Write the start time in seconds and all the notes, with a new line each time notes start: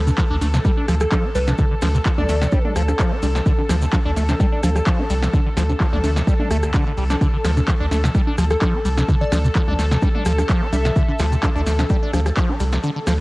Already playing: D2 A4
0.07 C3, closed hi-hat, high conga, maracas
0.18 F3, kick, clap, closed hi-hat, maracas
0.30 D2 D4
0.41 D2 A3, snare, open hi-hat, high conga, maracas
0.54 C3, snare, closed hi-hat, maracas
0.65 G3, kick, closed hi-hat, maracas
0.77 D4, high conga
0.88 D2 F3, cross-stick, open hi-hat, maracas
0.95 closed hi-hat
1.00 F3 A4, cross-stick, closed hi-hat, maracas
1.12 F3 A4, kick, clap, closed hi-hat, high conga, maracas
1.24 D4
1.35 C2 G3 B4, open hi-hat, maracas
1.47 C3, snare, closed hi-hat, high conga, maracas
1.58 D3, kick, closed hi-hat, maracas
1.71 D3
1.82 D2 F3, cross-stick, snare, open hi-hat, high conga, maracas
1.94 C3, closed hi-hat, maracas
2.05 F3, kick, clap, closed hi-hat, maracas
2.18 D2 D4 D5, mid tom, high conga
2.29 D2 A3, snare, open hi-hat, maracas
2.41 C3, snare, maracas
2.51 G3, kick, closed hi-hat, high conga, maracas
2.65 D4, mid tom
2.76 D2 F3, cross-stick, open hi-hat, maracas
2.82 closed hi-hat
2.88 F3, cross-stick, closed hi-hat, high conga, maracas
2.99 F3, kick, clap, closed hi-hat, maracas
3.12 D4
3.22 C2 G3, open hi-hat, high conga, maracas
3.35 C3, snare, closed hi-hat, maracas
3.46 D3, kick, closed hi-hat, maracas
3.59 D3, high conga
3.69 D2 F3, cross-stick, snare, open hi-hat, maracas
3.81 C3, closed hi-hat, maracas
3.93 F3, kick, clap, closed hi-hat, high conga, maracas
4.05 D2 D4
4.16 D2 A3, snare, open hi-hat, maracas
4.28 C3, snare, closed hi-hat, high conga, maracas
4.40 G3, kick, closed hi-hat, maracas
4.52 D4
4.63 D2 F3, cross-stick, open hi-hat, high conga, maracas
4.69 closed hi-hat
4.76 F3, cross-stick, closed hi-hat, maracas
4.87 F3, kick, clap, closed hi-hat, maracas
4.99 D4, high conga
5.10 C2 G3, open hi-hat, maracas
5.22 C3, snare, closed hi-hat, maracas
5.33 D3, kick, closed hi-hat, high conga, maracas
5.46 D3
5.57 D2 F3, cross-stick, snare, open hi-hat, maracas
5.69 C3, high conga, maracas
5.80 F3, kick, clap, closed hi-hat, maracas
5.93 D2 D4, mid tom
6.04 D2 A3, snare, open hi-hat, high conga, maracas
6.16 C3, snare, closed hi-hat, maracas
6.27 G3, kick, closed hi-hat, maracas
6.40 D4, mid tom, high conga
6.51 D2 A3, cross-stick, open hi-hat, maracas
6.63 D2, cross-stick, closed hi-hat, maracas
6.74 D3, kick, clap, closed hi-hat, high conga, maracas
6.87 D3
6.97 C2 G3, open hi-hat, maracas
7.10 D4, snare, closed hi-hat, high conga, maracas
7.21 D3 A4, kick, closed hi-hat, high conga, maracas
7.33 D3
7.44 D2 F3, cross-stick, snare, open hi-hat, maracas
7.57 C3, closed hi-hat, high conga, maracas
7.68 F3, kick, clap, closed hi-hat, maracas
7.80 D2 D4
7.91 D2 A3, snare, open hi-hat, high conga, maracas
8.04 C3, snare, closed hi-hat, maracas
8.15 G3, kick, closed hi-hat, maracas
8.27 D4, high conga
8.38 D2 F3, cross-stick, open hi-hat, maracas
8.44 closed hi-hat
8.50 F3 A4, cross-stick, closed hi-hat, maracas
8.62 F3 A4, kick, clap, closed hi-hat, high conga, maracas
8.74 D4
8.85 C2 G3, open hi-hat, maracas
8.98 C3, snare, closed hi-hat, high conga, maracas
9.09 D3, kick, closed hi-hat, maracas
9.21 D3 D5
9.32 D2 F3, cross-stick, snare, open hi-hat, high conga, maracas
9.44 C3, closed hi-hat, maracas
9.55 F3, kick, clap, closed hi-hat, maracas
9.68 D2 D4, mid tom, high conga
9.79 D2 A3, snare, open hi-hat, maracas
9.91 C3, snare, maracas
10.02 G3, kick, closed hi-hat, high conga, maracas
10.15 D4, mid tom
10.25 D2 F3, cross-stick, open hi-hat, maracas
10.32 closed hi-hat
10.38 F3, cross-stick, closed hi-hat, high conga, maracas
10.49 F3, kick, clap, closed hi-hat, maracas
10.62 D4
10.73 C2 G3 E5, open hi-hat, high conga, maracas
10.85 C3, snare, closed hi-hat, maracas
10.96 D3, kick, closed hi-hat, maracas
11.08 D3, high conga
11.19 D2 F3, cross-stick, snare, open hi-hat, maracas
11.32 C3, closed hi-hat, maracas
11.43 F3, kick, clap, closed hi-hat, high conga, maracas
11.55 D2 D4
11.66 D2 A3, snare, open hi-hat, maracas
11.79 C3, snare, closed hi-hat, high conga, maracas
11.89 G3, kick, closed hi-hat, maracas
12.02 D4
12.13 D2 F3, cross-stick, open hi-hat, high conga, maracas
12.19 closed hi-hat
12.26 F3, cross-stick, closed hi-hat, maracas
12.37 F3, kick, clap, closed hi-hat, maracas
12.49 D4, high conga
12.60 C2 G3, open hi-hat, maracas
12.72 C3, snare, closed hi-hat, maracas
12.83 D3, closed hi-hat, high conga, maracas
12.96 D3
13.07 D2 F3, cross-stick, snare, open hi-hat, maracas